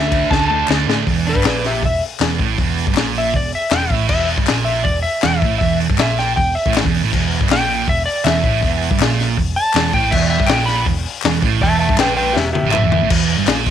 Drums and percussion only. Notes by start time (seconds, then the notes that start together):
0.12 kick, ride
0.31 kick, snare
0.68 snare, clap
0.90 snare
1.07 kick, open hi-hat
1.27 open hi-hat
1.35 kick
1.43 snare, clap, open hi-hat
1.64 snare, open hi-hat
1.83 kick, open hi-hat
2.02 open hi-hat
2.20 snare, clap, open hi-hat
2.39 kick, open hi-hat
2.58 kick, open hi-hat
2.78 open hi-hat
2.87 kick
2.95 snare, clap, open hi-hat
3.15 open hi-hat
3.34 kick, open hi-hat
3.52 open hi-hat
3.70 snare, clap, open hi-hat
3.90 kick, open hi-hat
4.09 kick, crash
4.28 open hi-hat
4.38 kick
4.47 snare, clap, open hi-hat
4.66 open hi-hat
4.85 kick, open hi-hat
5.04 open hi-hat
5.22 snare, clap, open hi-hat
5.42 kick, open hi-hat
5.61 kick, open hi-hat
5.80 open hi-hat
5.90 kick
5.98 snare, clap, open hi-hat
6.18 snare, open hi-hat
6.37 kick, open hi-hat
6.56 open hi-hat
6.66 kick
6.74 snare, clap, open hi-hat
6.85 kick
6.94 open hi-hat
7.13 kick, crash
7.31 open hi-hat
7.41 kick
7.49 snare, clap, open hi-hat
7.70 open hi-hat
7.88 kick, open hi-hat
8.08 open hi-hat
8.25 snare, clap, open hi-hat
8.44 kick, open hi-hat
8.63 kick, open hi-hat
8.82 open hi-hat
8.91 kick
9.00 snare, clap, open hi-hat
9.20 snare, open hi-hat
9.37 kick, open hi-hat
9.57 open hi-hat
9.73 snare, clap, open hi-hat
9.93 kick, open hi-hat
10.12 kick, crash
10.31 open hi-hat
10.40 kick
10.48 snare, clap, open hi-hat
10.67 snare, open hi-hat
10.86 kick, open hi-hat
11.06 open hi-hat
11.22 snare, clap, open hi-hat
11.43 kick, open hi-hat
11.61 kick, open hi-hat
11.80 open hi-hat
11.89 kick
11.98 snare, clap, open hi-hat
12.17 open hi-hat
12.37 snare
12.55 high tom
12.71 clap, mid tom
12.92 floor tom
13.10 kick, crash
13.28 open hi-hat
13.47 snare, clap, open hi-hat
13.66 kick, snare, open hi-hat